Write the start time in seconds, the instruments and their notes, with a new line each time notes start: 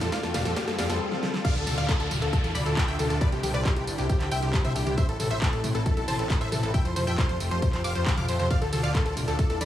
Already playing: riser
0.01 analog synth bass F2, supersaw synth A4, snare, closed hi-hat, tambourine
0.12 supersaw synth D5 F5, kick, snare, closed hi-hat, tambourine
0.23 analog synth bass F2, supersaw synth A4, snare, tambourine
0.34 analog synth bass F1, supersaw synth D5 F5, snare, open hi-hat, mid tom, tambourine
0.45 analog synth bass F2, supersaw synth A4, snare, closed hi-hat, tambourine
0.56 supersaw synth D5 F5, kick, snare, closed hi-hat, tambourine
0.67 analog synth bass G2, supersaw synth A4, snare, tambourine
0.78 analog synth bass F2, supersaw synth D5 F5, snare, open hi-hat, tambourine
0.90 analog synth bass F2, supersaw synth A4, snare, closed hi-hat, tambourine
1.12 snare
1.23 snare
1.34 snare
1.45 supersaw synth D5 F5, synth pluck F5, kick, closed hi-hat, crash, tambourine, downlifter
1.56 analog synth bass D2, supersaw synth A4, synth pluck A4, closed hi-hat, tambourine
1.67 analog synth bass D2, supersaw synth A4, synth pluck A4, open hi-hat, mid tom, tambourine
1.78 analog synth bass D2, supersaw synth D5 F5, synth pluck F5, closed hi-hat, tambourine
1.89 synth pluck A4, supersaw synth A4, kick, clap, closed hi-hat, tambourine
2.00 analog synth bass D2, supersaw synth A4, synth pluck A4, closed hi-hat, tambourine
2.11 analog synth bass D1, open hi-hat, mid tom, tambourine
2.22 analog synth bass D2, supersaw synth A4, synth pluck A4, closed hi-hat, tambourine
2.33 supersaw synth A4, synth pluck A4, kick, closed hi-hat, tambourine
2.44 analog synth bass E2, supersaw synth A4, synth pluck A4, closed hi-hat, tambourine
2.55 analog synth bass D2, supersaw synth D5 B5, synth pluck B5, open hi-hat, mid tom, tambourine
2.66 analog synth bass D2, supersaw synth A4, synth pluck A4, closed hi-hat, tambourine
2.77 supersaw synth A4, synth pluck A4, kick, clap, closed hi-hat, tambourine
2.88 analog synth bass D2, supersaw synth E5 G5, synth pluck G5, closed hi-hat, tambourine
2.99 analog synth bass D2, supersaw synth A4, synth pluck A4, open hi-hat, mid tom, tambourine
3.10 analog synth bass D2, supersaw synth A4, synth pluck A4, closed hi-hat, tambourine
3.21 supersaw synth B4 D5, synth pluck D5, kick, closed hi-hat, tambourine
3.32 analog synth bass C2, supersaw synth G4, synth pluck G4, closed hi-hat, tambourine
3.43 analog synth bass C2, supersaw synth G4, synth pluck G4, open hi-hat, mid tom, tambourine
3.54 analog synth bass C2, supersaw synth B4 D5, synth pluck D5, closed hi-hat, tambourine
3.65 supersaw synth G4, synth pluck G4, kick, clap, closed hi-hat, tambourine
3.76 analog synth bass C2, supersaw synth G4, synth pluck G4, closed hi-hat, tambourine
3.87 analog synth bass G1, open hi-hat, tambourine
3.98 analog synth bass C2, supersaw synth G4, synth pluck G4, closed hi-hat, tambourine
4.09 supersaw synth G4, synth pluck G4, kick, closed hi-hat, tambourine
4.20 analog synth bass D2, supersaw synth G4, synth pluck G4, clap, closed hi-hat, tambourine
4.31 analog synth bass C2, supersaw synth E5 G5, synth pluck G5, open hi-hat, tambourine
4.42 analog synth bass C2, supersaw synth G4, synth pluck G4, closed hi-hat, tambourine
4.53 supersaw synth G4, synth pluck G4, kick, clap, closed hi-hat, tambourine
4.64 analog synth bass C2, supersaw synth C5 E5, synth pluck E5, closed hi-hat, mid tom, tambourine
4.75 analog synth bass C2, supersaw synth G4, synth pluck G4, open hi-hat, tambourine
4.86 analog synth bass C2, supersaw synth G4, synth pluck G4, closed hi-hat, mid tom, tambourine
4.97 supersaw synth C5 E5, synth pluck E5, kick, closed hi-hat, tambourine
5.09 analog synth bass A1, supersaw synth A4, synth pluck A4, closed hi-hat, tambourine
5.20 analog synth bass A1, supersaw synth A4, synth pluck A4, open hi-hat, mid tom, tambourine
5.30 analog synth bass A1, supersaw synth C5 E5, synth pluck E5, closed hi-hat, tambourine
5.42 supersaw synth A4, synth pluck A4, kick, clap, closed hi-hat, tambourine
5.53 analog synth bass A1, supersaw synth A4, synth pluck A4, closed hi-hat, tambourine
5.64 analog synth bass A2, open hi-hat, mid tom, tambourine
5.75 analog synth bass A1, supersaw synth A4, synth pluck A4, closed hi-hat, tambourine
5.86 supersaw synth A4, synth pluck A4, kick, closed hi-hat, tambourine
5.97 analog synth bass B1, synth pluck A4, supersaw synth A4, closed hi-hat, tambourine
6.08 analog synth bass A1, supersaw synth C5 A5, synth pluck A5, open hi-hat, mid tom, tambourine
6.19 analog synth bass A1, supersaw synth A4, synth pluck A4, closed hi-hat, tambourine
6.30 supersaw synth A4, synth pluck A4, kick, clap, closed hi-hat, tambourine
6.41 analog synth bass A1, supersaw synth C5 E5, synth pluck E5, closed hi-hat, tambourine
6.52 analog synth bass A1, supersaw synth A4, synth pluck A4, open hi-hat, mid tom, tambourine
6.63 analog synth bass A1, supersaw synth A4, synth pluck A4, closed hi-hat, tambourine
6.74 supersaw synth E5 G5, synth pluck G5, kick, closed hi-hat, tambourine
6.85 analog synth bass F2, synth pluck C5, supersaw synth C5, closed hi-hat, tambourine
6.96 analog synth bass F2, supersaw synth C5, synth pluck C5, open hi-hat, mid tom, tambourine
7.07 analog synth bass F2, supersaw synth E5 G5, synth pluck G5, closed hi-hat, tambourine
7.18 supersaw synth C5, synth pluck C5, kick, clap, closed hi-hat, tambourine
7.29 analog synth bass F2, supersaw synth C5, synth pluck C5, closed hi-hat, tambourine
7.40 analog synth bass F1, open hi-hat, tambourine
7.51 analog synth bass F2, supersaw synth C5, synth pluck C5, closed hi-hat, tambourine
7.62 supersaw synth C5, synth pluck C5, kick, closed hi-hat, tambourine
7.73 analog synth bass F2, supersaw synth C5, synth pluck C5, clap, closed hi-hat, tambourine
7.84 analog synth bass F1, supersaw synth F5 D6, synth pluck D6, open hi-hat, tambourine
7.95 analog synth bass F2, supersaw synth C5, synth pluck C5, closed hi-hat, tambourine
8.06 synth pluck C5, supersaw synth C5, kick, clap, closed hi-hat, tambourine
8.17 analog synth bass F2, supersaw synth F5 D6, synth pluck D6, closed hi-hat, mid tom, tambourine
8.28 analog synth bass F2, synth pluck C5, supersaw synth C5, open hi-hat, tambourine
8.39 analog synth bass F2, supersaw synth C5, synth pluck C5, closed hi-hat, mid tom, tambourine
8.50 supersaw synth D5 F5, synth pluck F5, kick, closed hi-hat, ride, tambourine
8.61 analog synth bass D2, supersaw synth A4, synth pluck A4, closed hi-hat, tambourine
8.73 analog synth bass D2, supersaw synth A4, synth pluck A4, open hi-hat, mid tom, ride, tambourine
8.83 analog synth bass D2, supersaw synth D5 F5, synth pluck F5, closed hi-hat, tambourine
8.94 supersaw synth A4, synth pluck A4, kick, clap, closed hi-hat, ride, tambourine
9.06 analog synth bass D2, supersaw synth A4, synth pluck A4, closed hi-hat, tambourine
9.17 analog synth bass D1, open hi-hat, mid tom, ride, tambourine
9.28 analog synth bass D2, supersaw synth A4, synth pluck A4, closed hi-hat, tambourine
9.39 supersaw synth A4, synth pluck A4, kick, closed hi-hat, ride, tambourine
9.50 analog synth bass E2, supersaw synth A4, synth pluck A4, closed hi-hat, tambourine
9.61 analog synth bass D2, supersaw synth D5 B5, synth pluck B5, open hi-hat, mid tom, ride, tambourine